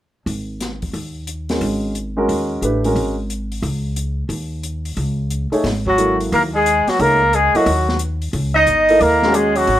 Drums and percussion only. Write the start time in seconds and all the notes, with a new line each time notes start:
0.27 open hi-hat
0.61 snare, closed hi-hat
0.82 kick, open hi-hat
0.94 open hi-hat
1.27 closed hi-hat
1.49 snare, open hi-hat
1.61 open hi-hat
1.95 closed hi-hat
2.29 open hi-hat
2.63 closed hi-hat
2.84 open hi-hat
2.96 open hi-hat
3.30 closed hi-hat
3.52 open hi-hat
3.63 open hi-hat
3.96 closed hi-hat
4.30 open hi-hat
4.63 closed hi-hat
4.85 open hi-hat
4.97 open hi-hat
5.30 closed hi-hat
5.53 open hi-hat
5.64 snare, open hi-hat
5.87 kick
5.98 closed hi-hat
6.21 open hi-hat
6.33 open hi-hat
6.66 closed hi-hat
6.88 snare, open hi-hat
7.00 open hi-hat
7.33 closed hi-hat
7.55 open hi-hat
7.66 open hi-hat
7.89 snare
7.99 closed hi-hat
8.22 open hi-hat
8.33 open hi-hat
8.67 closed hi-hat
8.89 open hi-hat
9.01 open hi-hat
9.23 snare
9.34 closed hi-hat
9.56 open hi-hat
9.67 open hi-hat